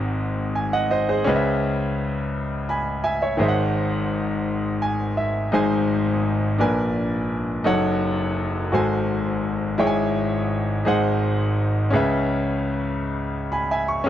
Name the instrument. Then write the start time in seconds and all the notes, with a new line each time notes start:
grand piano
Already playing: G#1 G#2 C4 F#4 G#4 D#5
0.55 G#5
0.73 D#5 F#5
0.91 C5 D#5
1.09 G#4 C5
1.24 C#2 C#3 C#4 G#4 B4
1.29 D#5
1.36 E5
2.69 G#5 B5
3.04 E5 G#5
3.22 C#5 E5
3.37 G#1 G#2 D#3 G#4 C5
3.42 E5
3.48 F#5
4.82 G#5
5.17 E5
5.52 G#1 G#2 D#4 G#4 C5 G#5
6.58 A#1 A#2 D4 A#4 B4 G#5
7.64 F#1 F#2 D#4 A4 C#5 F#5
8.72 G#1 G#2 F#4 A4 C5 G#5
9.78 G#1 G#2 E4 G#4 C#5 G5
9.87 G#5
10.85 G#1 G#2 D#4 G#4 C5 F#5
11.90 C#2 C#3 C#4 G#4 B4
11.96 E5
13.52 G#5 B5
13.71 E5 G#5
13.88 C#6
14.04 C#4 G#4